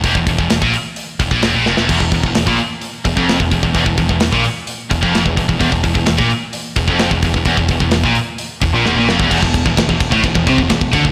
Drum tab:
CC |----------------|x---------------|----------------|----------------|
RD |----------------|----------------|----------------|----------------|
HH |o-o-o-o-o-o-o---|--o-o-o-o-o-o-o-|o-o-o-o-o-o-o-o-|o-o-o-o-o-o-o-o-|
SD |----o-------o-oo|----o-------o---|----o-------o---|----o-------o---|
BD |oooo-o----oo----|oooo-o----oo-ooo|oooo-o----oo-ooo|oooo-o----oo-ooo|

CC |----------------|x---------------|
RD |----------------|--x-x-x-x-x-x-x-|
HH |o-o-o-o-o-o-----|----------------|
SD |----o-------o-o-|----o-------o---|
BD |oooo-o----o----o|oooooooooooooooo|